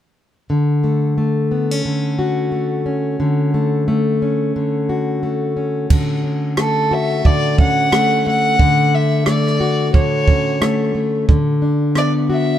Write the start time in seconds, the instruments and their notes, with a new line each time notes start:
0.50 steel-string acoustic guitar D3
0.84 steel-string acoustic guitar A3
1.18 steel-string acoustic guitar A3
1.51 steel-string acoustic guitar B3
1.71 steel-string acoustic guitar C#4
1.85 steel-string acoustic guitar D3
2.19 steel-string acoustic guitar F#4
2.52 steel-string acoustic guitar A3
2.86 steel-string acoustic guitar C#4
3.20 steel-string acoustic guitar D3
3.54 steel-string acoustic guitar A3
3.88 steel-string acoustic guitar A3
4.22 steel-string acoustic guitar C#4
4.56 steel-string acoustic guitar D3
4.89 steel-string acoustic guitar F#4
5.23 steel-string acoustic guitar A3
5.57 steel-string acoustic guitar C#4
5.90 steel-string acoustic guitar D3, kick, crash
6.24 steel-string acoustic guitar C#4
6.57 steel-string acoustic guitar A3, violin A4, cross-stick
6.91 steel-string acoustic guitar F#4, violin E5
7.25 steel-string acoustic guitar D3, violin D5, kick
7.58 steel-string acoustic guitar C#4, violin F#5, kick
7.92 steel-string acoustic guitar A3, cross-stick
8.27 steel-string acoustic guitar A3, violin F#5
8.59 steel-string acoustic guitar D3, kick
8.95 violin E5
9.26 steel-string acoustic guitar A3, violin D5, cross-stick
9.47 cross-stick
9.60 steel-string acoustic guitar F#4
9.94 steel-string acoustic guitar D3, violin C#5, kick
10.28 steel-string acoustic guitar C#4, kick
10.61 steel-string acoustic guitar A3, cross-stick
10.95 steel-string acoustic guitar A3
11.29 steel-string acoustic guitar D3, kick
11.62 steel-string acoustic guitar D4
11.95 steel-string acoustic guitar B3, violin D5, cross-stick
12.29 steel-string acoustic guitar F#4, violin E5